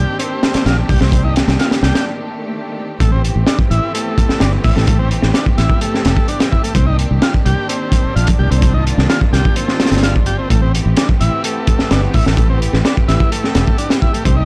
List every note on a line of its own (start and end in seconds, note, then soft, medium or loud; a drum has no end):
0.00 2.96 D#3 medium
0.00 2.96 A#3 medium
0.00 2.96 C4 medium
0.00 2.96 D4 medium
0.00 0.18 G4 loud
0.00 2.96 G4 medium
0.19 0.65 C4 medium
0.19 closed hi-hat medium
0.43 snare loud
0.43 closed hi-hat medium
0.54 muted fingered electric bass stroke soft
0.54 snare loud
0.54 closed hi-hat medium
0.66 0.82 A#1 medium
0.66 0.77 F4 loud
0.66 snare loud
0.66 closed hi-hat medium
0.89 0.97 C2 medium
0.89 1.00 G4 loud
0.89 kick loud
0.89 open hi-hat medium
1.01 1.42 C2 loud
1.01 1.11 C4 medium
1.01 snare medium
1.12 1.23 C4 medium
1.12 kick loud
1.12 closed hi-hat medium
1.24 1.35 D#4 loud
1.36 snare loud
1.36 closed hi-hat medium
1.48 1.56 C2 loud
1.48 snare loud
1.48 closed hi-hat medium
1.59 1.71 F4 loud
1.59 snare loud
1.59 closed hi-hat medium
1.71 snare loud
1.71 closed hi-hat medium
1.83 1.91 C2 medium
1.83 2.05 G4 loud
1.83 snare loud
1.83 closed hi-hat medium
1.95 snare loud
1.95 closed hi-hat medium
2.06 swell medium
2.99 3.29 A1 medium
2.99 6.71 E3 medium
2.99 6.71 A3 medium
2.99 3.11 A3 medium
2.99 6.71 B3 medium
2.99 6.71 C4 medium
2.99 8.58 G4 medium
2.99 kick loud
2.99 closed hi-hat medium
3.12 3.22 C4 loud
3.24 closed hi-hat medium
3.36 3.43 A1 loud
3.47 3.58 D4 loud
3.47 snare loud
3.47 closed hi-hat medium
3.59 kick loud
3.70 3.79 A1 medium
3.70 3.93 E4 loud
3.70 closed hi-hat medium
3.94 4.40 A3 medium
3.94 closed hi-hat medium
4.18 kick loud
4.18 closed hi-hat medium
4.29 muted fingered electric bass stroke soft
4.29 snare medium
4.40 4.57 G1 medium
4.40 4.52 D4 loud
4.40 snare loud
4.40 closed hi-hat medium
4.64 4.72 A1 medium
4.64 4.75 E4 loud
4.64 kick medium
4.64 open hi-hat medium
4.76 5.17 A1 medium
4.76 4.86 A3 medium
4.76 snare medium
4.87 4.98 A3 medium
4.87 kick loud
4.87 closed hi-hat medium
4.99 5.10 C4 loud
5.11 closed hi-hat medium
5.22 5.31 A1 loud
5.22 snare medium
5.34 5.46 D4 loud
5.34 snare loud
5.34 closed hi-hat medium
5.46 kick medium
5.58 5.66 A1 medium
5.58 5.80 E4 loud
5.58 snare soft
5.58 closed hi-hat medium
5.70 kick medium
5.81 6.27 A3 medium
5.81 closed hi-hat medium
5.94 snare soft
6.05 6.13 E1 medium
6.05 snare loud
6.05 closed hi-hat medium
6.16 kick loud
6.28 6.40 D4 loud
6.28 closed hi-hat medium
6.40 snare loud
6.40 closed hi-hat medium
6.52 6.62 E4 loud
6.52 kick medium
6.63 6.74 A3 medium
6.63 closed hi-hat medium
6.75 7.04 C2 loud
6.75 10.47 D#3 medium
6.75 10.47 A#3 medium
6.75 6.86 C4 medium
6.75 14.21 C4 medium
6.75 10.47 D4 medium
6.75 kick loud
6.75 closed hi-hat medium
6.86 6.97 D#4 loud
6.99 closed hi-hat medium
7.11 7.19 C2 loud
7.22 7.33 F4 loud
7.22 snare loud
7.22 closed hi-hat medium
7.34 kick medium
7.46 7.54 C2 medium
7.46 7.68 G4 loud
7.46 closed hi-hat medium
7.69 8.15 C4 medium
7.69 closed hi-hat medium
7.92 kick loud
7.92 closed hi-hat medium
8.05 muted fingered electric bass stroke soft
8.16 8.32 A#1 medium
8.16 8.27 F4 loud
8.16 closed hi-hat medium
8.27 kick loud
8.27 closed hi-hat medium
8.39 8.47 C2 medium
8.39 8.50 G4 loud
8.51 8.92 C2 loud
8.51 8.61 C4 medium
8.51 closed hi-hat medium
8.62 8.73 C4 medium
8.62 10.48 F4 medium
8.62 kick loud
8.62 closed hi-hat medium
8.74 8.85 D#4 loud
8.87 closed hi-hat medium
8.98 9.06 C2 loud
8.98 snare medium
9.09 9.21 F4 loud
9.09 snare loud
9.09 closed hi-hat medium
9.21 kick medium
9.33 9.41 C2 medium
9.33 9.55 G4 loud
9.33 snare soft
9.33 closed hi-hat medium
9.45 kick loud
9.56 10.02 C4 medium
9.56 closed hi-hat medium
9.68 snare soft
9.80 snare medium
9.80 closed hi-hat medium
9.86 snare medium
9.86 closed hi-hat medium
9.91 10.44 G1 medium
9.91 snare medium
9.91 closed hi-hat medium
9.97 snare medium
9.97 closed hi-hat medium
10.03 10.14 F4 loud
10.03 snare loud
10.03 closed hi-hat medium
10.16 kick medium
10.26 10.37 G4 loud
10.26 closed hi-hat medium
10.38 10.49 C4 medium
10.50 10.80 A1 loud
10.50 14.21 E3 medium
10.50 14.21 A3 medium
10.50 10.61 A3 medium
10.50 14.21 B3 medium
10.50 14.45 G4 medium
10.50 kick loud
10.50 closed hi-hat medium
10.62 10.72 C4 loud
10.75 closed hi-hat medium
10.86 10.93 A1 loud
10.97 11.08 D4 loud
10.97 snare loud
10.97 closed hi-hat loud
11.09 kick loud
11.20 11.29 A1 medium
11.20 11.43 E4 loud
11.20 closed hi-hat medium
11.44 11.90 A3 medium
11.44 closed hi-hat medium
11.67 kick medium
11.67 closed hi-hat medium
11.79 muted fingered electric bass stroke soft
11.79 snare medium
11.91 12.07 G1 medium
11.91 12.02 D4 loud
11.91 snare loud
11.91 closed hi-hat medium
12.14 12.22 A1 medium
12.14 12.25 E4 loud
12.14 kick loud
12.14 open hi-hat medium
12.26 12.67 A1 loud
12.26 12.36 A3 medium
12.26 snare medium
12.37 12.48 A3 medium
12.37 kick loud
12.37 closed hi-hat medium
12.50 12.60 C4 loud
12.62 closed hi-hat medium
12.73 12.81 A1 loud
12.73 snare soft
12.84 12.96 D4 loud
12.84 snare loud
12.84 closed hi-hat medium
12.97 kick medium
13.08 13.16 A1 medium
13.08 13.30 E4 loud
13.08 snare soft
13.08 closed hi-hat medium
13.20 kick medium
13.32 13.77 A3 medium
13.32 closed hi-hat medium
13.44 snare soft
13.55 13.63 E1 loud
13.55 snare loud
13.55 closed hi-hat medium
13.67 kick medium
13.78 13.89 D4 loud
13.78 closed hi-hat medium
13.90 snare loud
13.90 closed hi-hat medium
14.02 14.12 E4 loud
14.02 kick medium
14.13 14.24 A3 medium
14.13 closed hi-hat medium
14.25 14.45 C2 loud
14.25 14.45 D#3 medium
14.25 14.45 A#3 medium
14.25 14.36 C4 medium
14.25 14.45 C4 medium
14.25 14.45 D4 medium
14.25 kick loud
14.25 closed hi-hat medium
14.37 14.45 D#4 loud